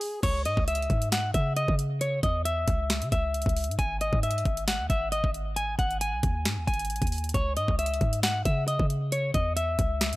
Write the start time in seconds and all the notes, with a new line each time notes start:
Already playing: G#4
0.01 open hi-hat
0.23 C#2 C#5, kick, closed hi-hat, crash
0.45 G#2 D#5, closed hi-hat
0.57 C#2, kick
0.68 E5, closed hi-hat
0.75 closed hi-hat
0.82 closed hi-hat
0.90 G#2, kick, closed hi-hat
1.02 closed hi-hat
1.12 F#5, finger snap, snare, closed hi-hat
1.34 C#3 E5, kick, closed hi-hat
1.56 D#5, closed hi-hat
1.68 C#3, kick
1.79 closed hi-hat
2.01 C#5, closed hi-hat
2.23 E2 D#5, kick, closed hi-hat
2.45 E5, closed hi-hat
2.68 C#2, kick, closed hi-hat
2.90 finger snap, snare, closed hi-hat
3.02 C#3, closed hi-hat
3.12 C#2 E5, kick, closed hi-hat
3.34 closed hi-hat
3.42 closed hi-hat
3.46 C#2, kick, closed hi-hat
3.56 closed hi-hat, open hi-hat
3.64 closed hi-hat
3.68 G#2, closed hi-hat
3.79 G#1 G#5, kick, closed hi-hat
4.01 D#5, closed hi-hat
4.13 G#2, kick
4.23 E5, closed hi-hat
4.31 closed hi-hat
4.38 closed hi-hat
4.45 G#1, kick, closed hi-hat
4.57 closed hi-hat
4.68 F#5, finger snap, snare, closed hi-hat
4.79 D#2
4.90 G#1 E5, kick, closed hi-hat
5.12 D#5, closed hi-hat
5.24 G#1, kick
5.34 closed hi-hat
5.56 G#5, closed hi-hat
5.79 G#1 F#5, kick, closed hi-hat
5.91 closed hi-hat
6.01 G#5, closed hi-hat
6.13 B1
6.23 D#2, kick, closed hi-hat
6.45 G#2, finger snap, snare, closed hi-hat
6.57 D#2
6.67 G#1 G#5, kick, closed hi-hat
6.74 closed hi-hat
6.79 closed hi-hat
6.85 closed hi-hat
6.90 A1, closed hi-hat
6.96 closed hi-hat
7.02 D#2, kick, closed hi-hat
7.07 closed hi-hat
7.12 closed hi-hat, open hi-hat
7.18 closed hi-hat
7.24 closed hi-hat
7.29 closed hi-hat
7.34 C#2 C#5, kick, closed hi-hat
7.57 G#2 D#5, closed hi-hat
7.68 C#2, kick
7.79 E5, closed hi-hat
7.86 closed hi-hat
7.94 closed hi-hat
8.01 G#2, kick, closed hi-hat
8.13 closed hi-hat
8.23 F#5, finger snap, snare, closed hi-hat
8.45 C#3 E5, kick, closed hi-hat
8.68 D#5, closed hi-hat
8.79 C#3, kick
8.90 closed hi-hat
9.12 C#5, closed hi-hat
9.34 E2 D#5, kick, closed hi-hat
9.56 E5, closed hi-hat
9.79 C#2, kick, closed hi-hat
10.01 finger snap, snare, closed hi-hat
10.13 C#3, closed hi-hat